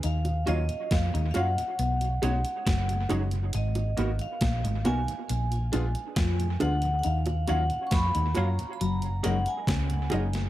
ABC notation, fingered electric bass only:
X:1
M:4/4
L:1/16
Q:1/4=68
K:D#m
V:1 name="Fingered electric bass" clef=bass
D,,2 D,, z E,, D,, F,, z B,,,2 B,,, z F,,,2 F,,,2 | G,,,2 G,,, z A,,, G,,, B,,, z A,,,2 A,,, z E,,2 =D,,2 | D,,2 D,, z E,, D,, F,, z F,,,2 F,,, z C,,2 F,,,2 |]